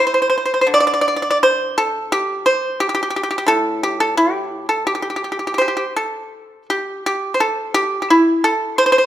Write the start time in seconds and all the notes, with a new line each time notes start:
0.07 C5
0.14 C5
0.22 C5
0.30 C5
0.38 C5
0.45 C5
0.54 C5
0.61 C5
0.67 D3
0.74 D5
0.80 D5
0.87 D5
0.94 D5
1.01 D5
1.08 D5
1.16 D5
1.22 D5
1.30 D5
1.43 C5
1.78 A4
2.12 G4
2.46 C5
2.80 G4
2.89 G4
2.95 G4
3.03 G4
3.10 G4
3.16 G4
3.23 G4
3.31 G4
3.38 G4
3.46 A2 A4
3.83 G4
4.00 A4
4.17 G4
4.69 A4
4.87 G4
4.95 G4
5.02 G4
5.10 G4
5.16 G4
5.24 G4
5.32 G4
5.39 G4
5.47 G4
5.54 G4
5.58 G4 C5
5.68 G4
5.77 G4
5.96 A4
6.70 G4
7.06 G4
7.34 C5
7.40 A4
7.74 G4
8.02 G4
8.10 E4
8.44 A4
8.78 C5
8.86 C5
8.92 C5
8.98 C5